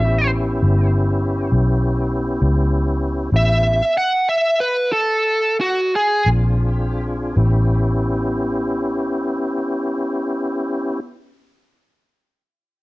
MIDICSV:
0, 0, Header, 1, 4, 480
1, 0, Start_track
1, 0, Tempo, 598802
1, 2667, Tempo, 626305
1, 2668, Time_signature, 12, 3, 24, 8
1, 3627, Tempo, 665927
1, 4587, Tempo, 725514
1, 5547, Tempo, 761421
1, 8992, End_track
2, 0, Start_track
2, 0, Title_t, "Lead electric guitar"
2, 0, Program_c, 0, 29
2, 0, Note_on_c, 0, 76, 92
2, 243, Note_off_c, 0, 76, 0
2, 2693, Note_on_c, 0, 76, 92
2, 3141, Note_off_c, 0, 76, 0
2, 3163, Note_on_c, 0, 78, 84
2, 3387, Note_off_c, 0, 78, 0
2, 3403, Note_on_c, 0, 76, 88
2, 3631, Note_off_c, 0, 76, 0
2, 3643, Note_on_c, 0, 71, 85
2, 3862, Note_off_c, 0, 71, 0
2, 3876, Note_on_c, 0, 69, 78
2, 4334, Note_off_c, 0, 69, 0
2, 4367, Note_on_c, 0, 66, 87
2, 4593, Note_off_c, 0, 66, 0
2, 4616, Note_on_c, 0, 68, 99
2, 4827, Note_off_c, 0, 68, 0
2, 8992, End_track
3, 0, Start_track
3, 0, Title_t, "Tonewheel organ"
3, 0, Program_c, 1, 16
3, 33, Note_on_c, 1, 61, 65
3, 34, Note_on_c, 1, 59, 61
3, 37, Note_on_c, 1, 64, 61
3, 37, Note_on_c, 1, 67, 63
3, 2645, Note_off_c, 1, 59, 0
3, 2645, Note_off_c, 1, 61, 0
3, 2647, Note_off_c, 1, 64, 0
3, 2647, Note_off_c, 1, 67, 0
3, 2670, Note_on_c, 1, 61, 68
3, 2672, Note_on_c, 1, 64, 62
3, 2674, Note_on_c, 1, 67, 62
3, 2676, Note_on_c, 1, 59, 66
3, 3044, Note_off_c, 1, 61, 0
3, 3045, Note_off_c, 1, 64, 0
3, 3046, Note_off_c, 1, 59, 0
3, 3046, Note_off_c, 1, 67, 0
3, 4827, Note_on_c, 1, 62, 65
3, 4830, Note_on_c, 1, 68, 66
3, 4831, Note_on_c, 1, 60, 65
3, 4831, Note_on_c, 1, 65, 68
3, 5543, Note_off_c, 1, 62, 0
3, 5545, Note_off_c, 1, 65, 0
3, 5545, Note_off_c, 1, 68, 0
3, 5546, Note_off_c, 1, 60, 0
3, 5548, Note_on_c, 1, 59, 64
3, 5549, Note_on_c, 1, 61, 66
3, 5550, Note_on_c, 1, 67, 63
3, 5551, Note_on_c, 1, 64, 63
3, 7839, Note_off_c, 1, 59, 0
3, 7840, Note_off_c, 1, 61, 0
3, 7841, Note_off_c, 1, 67, 0
3, 7842, Note_off_c, 1, 64, 0
3, 8992, End_track
4, 0, Start_track
4, 0, Title_t, "Fingered electric bass"
4, 0, Program_c, 2, 33
4, 0, Note_on_c, 2, 33, 85
4, 480, Note_off_c, 2, 33, 0
4, 501, Note_on_c, 2, 31, 81
4, 1199, Note_off_c, 2, 31, 0
4, 1218, Note_on_c, 2, 35, 80
4, 1917, Note_off_c, 2, 35, 0
4, 1936, Note_on_c, 2, 37, 84
4, 2643, Note_off_c, 2, 37, 0
4, 2661, Note_on_c, 2, 33, 83
4, 3032, Note_off_c, 2, 33, 0
4, 4819, Note_on_c, 2, 34, 90
4, 5525, Note_off_c, 2, 34, 0
4, 5550, Note_on_c, 2, 33, 87
4, 7839, Note_off_c, 2, 33, 0
4, 8992, End_track
0, 0, End_of_file